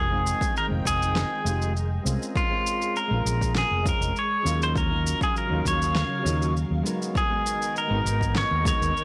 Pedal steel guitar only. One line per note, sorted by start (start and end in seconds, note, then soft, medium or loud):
0.00 0.57 G#4 medium
0.58 0.65 A#4 loud
0.87 1.72 G#4 medium
2.37 2.98 F4 medium
2.97 3.52 A#4 loud
3.58 3.88 G#4 loud
3.89 4.18 A#4 medium
4.19 4.63 C#5 loud
4.63 4.77 C5 medium
4.78 5.19 A#4 loud
5.23 5.37 G#4 medium
5.38 5.65 A#4 loud
5.68 6.53 C#5 medium
7.17 7.78 G#4 medium
7.78 8.39 A#4 medium
8.38 8.66 C#5 loud
8.68 9.04 C#5 loud